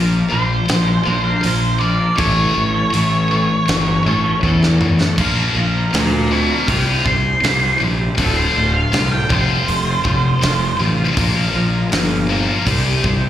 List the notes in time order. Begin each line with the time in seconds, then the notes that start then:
Already playing: A#1 A#2 F3 A#3 D4 F4 A#4
0.30 A#1 A#2 F3 A#3 D4 F4 A#4 C5
0.50 muted clean electric guitar stroke
0.68 A#1 A#2 F3, snare, open hi-hat
0.88 muted clean electric guitar stroke
1.06 A#1 A#2 F3 A#3 D4 F4 A#4
1.24 A#3 D4 F4 A#4 C5
1.43 A#1 A#2 F3 A#3 D4 F4 A#4, open hi-hat
1.79 A#2 F3 A#3 D4 D5
1.83 F4 A#4
1.99 A#3 D4 F4 A#4
2.17 A1 A2 E3 A3 C#4 E4 A4 C#5, kick, open hi-hat
2.55 A1 A2 E3
2.74 A3 C#4 E4 A4
2.92 A1 A2 E3 A3 C#4 E4 A4, open hi-hat
3.30 A2 E3 A3 C#4 E4 A4
3.50 muted clean electric guitar stroke
3.68 G1 A2 E3, snare, open hi-hat
3.87 muted clean electric guitar stroke
4.05 A1 A2 E3 A3 C#4 E4 A4
4.24 A3 C#4 E4 A4
4.42 E2 A2 E3 A3 C#4 E4 A4, kick
4.63 snare
4.80 A2 E3 A3 C#4 E4 A4, mid tom
4.99 A3 C#4 E4 A4, snare
5.17 A#1 A#2 F3 A#3 F4 A#4, kick, crash
5.35 A#3 F4 A#4
5.54 A#1 A#2 F3 A#3 F4 A#4
5.73 A#3 F4 A#4
5.91 D2 A#2 F3 A#3 F4 D5, snare, open hi-hat
6.30 A#2 F3 A#3 F4 A4 F5
6.49 A#3 F4 A#4
6.67 C2 C3 G3 C4 E4 G4 C5 A5, kick, open hi-hat
6.86 C4 E4 G4 C5
7.05 C2 C3 G3 C4 E4 G4 C5 C6, kick
7.42 C2 C3 G3 C4 E4 G4 C5, snare, open hi-hat
7.80 A#1 C3 G3 C4 E4 G4 C5
7.99 C4 E4 G4 C5
8.17 D1 D2 A2 D3 A3 C4 F4 A4, kick, open hi-hat
8.36 D3 A3 C4 F4 C5
8.55 D1 D2 A2 D3 A3 C4 F4
8.73 D3 A3 C4 F4 F5
8.92 C2 D2 A2 D3 A3 C4 F4, snare, open hi-hat
9.12 G5
9.29 F1 F2 C3 F3 G3 C4 F4 C5, kick
9.48 F3 G3 C4 F4
9.67 F1 F2 C3, open hi-hat
9.85 F3 G3 C4 F4
10.04 F1 F2 C3 F3 G3 C4 F4, kick
10.41 F1 F2 C3 F3 G3 C4 F4, snare, open hi-hat
10.79 A1 F2 C3 F3 G3 C4 F4
10.98 F3 G3 C4 F4
11.17 A#1 A#2 F3 A#3 F4 A#4, kick, open hi-hat
11.36 A#3 F4 A#4
11.53 A#1 A#2 F3 A#3 F4 A#4
11.72 A#3 F4 A#4
11.91 G1 A#2 F3 A#3 F4 A#4, snare, open hi-hat
12.28 A#2 F3 A#3 F4 A#4
12.47 A#3 F4 A#4
12.66 C2 C3 G3 C4 E4 G4 C5, kick, open hi-hat
12.84 C4 E4 G4 C5
13.03 C2 C3 G3 C4 E4 G4 C5, kick